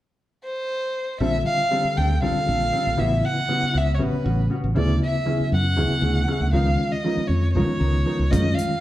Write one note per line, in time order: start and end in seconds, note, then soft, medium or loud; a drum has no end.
0.44 1.16 C5 medium
1.20 1.42 A#1 medium
1.20 1.62 D3 medium
1.20 1.36 G3 medium
1.20 1.61 G3 medium
1.20 1.36 C4 medium
1.20 1.62 C4 medium
1.20 1.36 D4 medium
1.20 1.61 F4 medium
1.20 1.36 A4 medium
1.20 1.44 E5 medium
1.46 1.99 F5 loud
1.71 2.09 D3 medium
1.71 1.86 G3 soft
1.71 2.09 G3 medium
1.71 1.87 C4 medium
1.71 2.09 C4 medium
1.71 1.87 D4 soft
1.71 2.08 G4 medium
1.71 1.87 A4 soft
1.84 muted fingered electric bass stroke soft
1.96 2.23 D2 medium
1.96 2.13 C4 soft
1.96 2.12 D4 soft
1.96 2.12 A4 soft
1.96 2.23 G5 medium
2.22 2.34 A#1 medium
2.22 2.97 D3 medium
2.22 2.37 G3 medium
2.22 2.97 G3 medium
2.22 2.38 C4 medium
2.22 2.97 C4 medium
2.22 2.38 D4 medium
2.22 2.97 F4 medium
2.22 2.38 A4 medium
2.22 3.01 F5 loud
2.36 muted fingered electric bass stroke soft
2.47 2.70 A#1 medium
2.47 2.63 C4 soft
2.47 2.63 D4 soft
2.47 2.63 A4 soft
2.73 2.88 G3 medium
2.73 2.88 C4 medium
2.73 2.89 D4 medium
2.73 2.89 A4 medium
2.87 2.97 A#1 medium
2.97 3.21 A1 medium
2.97 3.39 C#3 medium
2.97 3.39 F#3 medium
2.97 3.13 G3 medium
2.97 3.13 B3 medium
2.97 3.39 B3 medium
2.97 3.14 C#4 medium
2.97 3.39 E4 medium
2.97 3.14 F#4 medium
2.97 3.27 E5 medium
3.25 3.79 F#5 loud
3.49 3.86 C#3 medium
3.49 3.86 F#3 medium
3.49 3.64 G3 medium
3.49 3.86 B3 medium
3.49 3.64 B3 soft
3.49 3.65 C#4 medium
3.49 3.87 E4 medium
3.49 3.65 F#4 soft
3.63 muted fingered electric bass stroke soft
3.74 4.00 C#2 medium
3.74 3.90 B3 soft
3.74 3.90 C#4 soft
3.74 3.90 F#4 soft
3.74 3.96 E5 medium
3.94 4.04 C#5 soft
3.99 4.11 A1 medium
3.99 4.74 C#3 medium
3.99 4.74 F#3 medium
3.99 4.15 G3 medium
3.99 4.15 B3 medium
3.99 4.75 B3 medium
3.99 4.74 C#4 medium
3.99 4.15 C#4 medium
3.99 4.15 F#4 medium
3.99 4.52 B4 medium
4.13 muted fingered electric bass stroke soft
4.24 4.48 A1 medium
4.24 4.41 B3 soft
4.24 4.41 C#4 soft
4.24 4.40 F#4 soft
4.50 4.66 G3 soft
4.50 4.66 B3 medium
4.50 4.66 C#4 medium
4.50 4.67 F#4 medium
4.64 4.75 A1 medium
4.75 4.98 D2 medium
4.75 5.17 C#3 medium
4.75 4.91 F#3 medium
4.75 5.17 F#3 medium
4.75 5.17 B3 medium
4.75 4.91 C#4 medium
4.75 4.91 E4 medium
4.75 5.17 E4 medium
4.75 4.91 G#4 medium
4.75 5.01 D5 medium
5.03 5.50 E5 medium
5.26 5.64 C#3 medium
5.26 5.42 F#3 soft
5.26 5.64 F#3 medium
5.26 5.64 B3 medium
5.26 5.42 C#4 soft
5.26 5.42 E4 medium
5.26 5.64 E4 medium
5.26 5.43 G#4 medium
5.40 muted fingered electric bass stroke soft
5.52 5.77 F#2 medium
5.52 6.51 F#5 medium
5.77 5.89 D2 medium
5.77 6.53 C#3 medium
5.77 5.93 F#3 medium
5.77 6.53 F#3 medium
5.77 6.53 B3 medium
5.77 5.93 C#4 medium
5.77 5.93 E4 medium
5.77 6.53 E4 medium
5.77 5.93 G#4 medium
5.90 muted fingered electric bass stroke soft
6.02 6.25 D2 medium
6.02 6.19 C#4 soft
6.02 6.18 E4 soft
6.02 6.18 G#4 soft
6.28 6.44 F#3 medium
6.28 6.44 C#4 medium
6.28 6.44 E4 medium
6.28 6.44 G#4 medium
6.41 6.52 D2 medium
6.53 6.76 C#2 medium
6.53 6.95 D#3 medium
6.53 6.69 F3 medium
6.53 6.95 G#3 medium
6.53 6.69 B3 medium
6.53 6.95 C#4 medium
6.53 6.69 D#4 medium
6.53 6.95 F4 medium
6.53 6.69 A#4 medium
6.53 6.94 F5 medium
6.92 7.29 D#5 medium
7.04 7.42 D#3 medium
7.04 7.20 F3 medium
7.04 7.42 G#3 medium
7.04 7.21 B3 medium
7.04 7.42 C#4 medium
7.04 7.21 D#4 medium
7.04 7.42 F4 medium
7.04 7.21 A#4 medium
7.17 muted fingered electric bass stroke soft
7.28 7.56 F2 medium
7.28 7.53 C#5 medium
7.53 7.66 C#2 medium
7.53 8.30 D#3 medium
7.53 7.71 F3 medium
7.53 8.31 G#3 medium
7.53 7.71 B3 medium
7.53 8.31 C#4 medium
7.53 7.71 D#4 medium
7.53 8.31 F4 medium
7.53 7.72 A#4 medium
7.53 8.32 C#5 medium
7.80 8.03 C#2 medium
7.80 7.97 B3 soft
7.80 7.96 D#4 soft
7.80 7.96 A#4 soft
8.06 8.22 F3 medium
8.06 8.22 B3 soft
8.06 8.22 D#4 medium
8.06 8.22 A#4 medium
8.19 8.30 C#2 medium
8.31 8.55 F#2 medium
8.31 8.73 D#3 medium
8.31 8.47 G#3 medium
8.31 8.73 G#3 medium
8.31 8.47 C#4 medium
8.31 8.73 C#4 medium
8.31 8.47 D#4 medium
8.31 8.73 F4 medium
8.31 8.48 A#4 medium
8.31 8.56 D#5 medium
8.31 kick medium
8.31 closed hi-hat medium
8.31 high conga medium
8.54 8.80 F5 medium
8.59 closed hi-hat soft
8.70 low conga medium